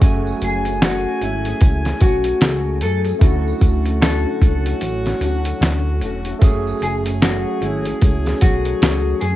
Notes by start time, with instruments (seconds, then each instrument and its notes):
0.00 analog synth bass F#1, brass ensemble F#3 A3 G#5, nylon-string guitar F#3 A3 C#4 G#4, tine electric piano C#4 F#4 G#5, kick, closed hi-hat, tambourine
0.05 tine electric piano A3
0.27 tambourine
0.42 analog synth bass F#1, clean electric guitar G#4, closed hi-hat, tambourine
0.65 nylon-string guitar A3 C#4 G#4, closed hi-hat, tambourine
0.81 nylon-string guitar F#3 A3 C#4 G#4, clean electric guitar F#4, snare, closed hi-hat, tambourine
1.21 analog synth bass G#1, clean electric guitar E4, closed hi-hat
1.45 nylon-string guitar A3 C#4 G#4, closed hi-hat
1.61 analog synth bass C#2, kick, closed hi-hat, tambourine
1.85 nylon-string guitar A3 C#4 G#4, snare, closed hi-hat, tambourine
2.01 analog synth bass B1, nylon-string guitar F#3 A3 C#4 G#4, clean electric guitar F#4, kick, closed hi-hat, tambourine
2.24 closed hi-hat
2.41 analog synth bass C#2, nylon-string guitar F#3 A3 C#4 G#4, snare, closed hi-hat, tambourine
2.81 analog synth bass F#2, nylon-string guitar F#3 A3 C#4 G#4, clean electric guitar A4, closed hi-hat, tambourine
3.05 nylon-string guitar A3 C#4 G#4, closed hi-hat, tambourine
3.19 analog synth bass D2, nylon-string guitar D3 A3 C#4 F#4, brass ensemble F#3 C#4 F#4, tine electric piano A3 C#4 E4, kick, closed hi-hat
3.23 tine electric piano F#4, tambourine
3.48 tambourine
3.61 analog synth bass D2, kick, closed hi-hat, tambourine
3.86 nylon-string guitar A3 C#4 F#4, closed hi-hat
4.01 nylon-string guitar D3 A3 C#4 F#4, clean electric guitar A4, snare, closed hi-hat, tambourine
4.42 analog synth bass C#2, kick, closed hi-hat
4.65 nylon-string guitar A3 C#4 F#4, closed hi-hat
4.81 analog synth bass A1, closed hi-hat, tambourine
5.05 nylon-string guitar A3 C#4 F#4, snare, closed hi-hat, tambourine
5.21 analog synth bass D2, nylon-string guitar D3 A3 C#4 F#4, closed hi-hat, tambourine
5.45 closed hi-hat, tambourine
5.61 analog synth bass D2, nylon-string guitar D3 A3 C#4 F#4, snare, closed hi-hat, tambourine
6.01 analog synth bass E1, nylon-string guitar D3 A3 C#4, closed hi-hat, tambourine
6.05 nylon-string guitar F#4
6.25 nylon-string guitar A3 C#4 F#4, closed hi-hat
6.39 analog synth bass F#1, brass ensemble F#3 A3 G#4, nylon-string guitar F#3, tine electric piano A3 C#4 F#4, kick, closed hi-hat, tambourine
6.44 nylon-string guitar A3 C#4 G#4, tine electric piano G#4
6.67 tambourine
6.81 analog synth bass F#1, clean electric guitar G#4, closed hi-hat, tambourine
7.06 nylon-string guitar A3 C#4 G#4, closed hi-hat, tambourine
7.22 nylon-string guitar F#3 A3 C#4 G#4, clean electric guitar F#4, snare, closed hi-hat, tambourine
7.61 analog synth bass G#1, clean electric guitar E4, closed hi-hat
7.85 nylon-string guitar A3 C#4 G#4, closed hi-hat
8.02 analog synth bass C#2, kick, closed hi-hat, tambourine
8.26 nylon-string guitar A3 C#4 G#4, snare, closed hi-hat
8.41 analog synth bass B1, nylon-string guitar F#3 A3 C#4 G#4, clean electric guitar F#4, kick, closed hi-hat, tambourine
8.65 closed hi-hat
8.81 analog synth bass C#2, nylon-string guitar F#3 A3 C#4 G#4, snare, closed hi-hat, tambourine
9.21 analog synth bass F#2, nylon-string guitar F#3 A3 C#4 G#4, clean electric guitar G#4, closed hi-hat, tambourine